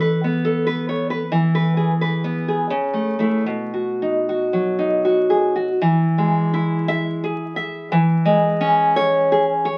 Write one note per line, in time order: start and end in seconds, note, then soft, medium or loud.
0.00 1.28 E3 medium
0.00 0.44 A4 medium
0.00 0.65 B4 medium
0.24 1.23 B3 medium
0.45 1.33 A4 medium
0.67 0.88 B4 medium
0.89 1.10 C#5 medium
1.10 1.33 B4 medium
1.32 2.67 E3 medium
1.55 1.92 B4 medium
1.77 2.47 G#4 medium
2.01 2.72 B4 medium
2.24 2.72 B3 medium
2.48 2.72 G#4 medium
2.70 3.45 C#3 medium
2.93 3.18 A3 soft
3.19 3.44 A3 soft
3.19 3.45 E4 medium
3.46 5.77 B2 medium
3.74 4.28 F#4 soft
4.02 4.77 D#4 medium
4.29 5.04 F#4 medium
4.53 5.69 F#3 medium
4.79 5.81 D#4 medium
5.05 5.54 F#4 medium
5.30 5.56 G#4 medium
5.56 5.81 F#4 medium
5.82 7.89 E3 medium
6.18 7.23 G#3 medium
6.54 7.56 E4 medium
6.88 7.44 E5 loud
7.24 7.93 G#4 medium
7.56 7.92 E5 medium
7.92 9.78 E3 medium
8.25 9.31 G#3 medium
8.61 9.66 C#4 medium
8.96 9.53 C#5 loud
9.32 9.78 G#4 medium
9.65 9.78 C#5 medium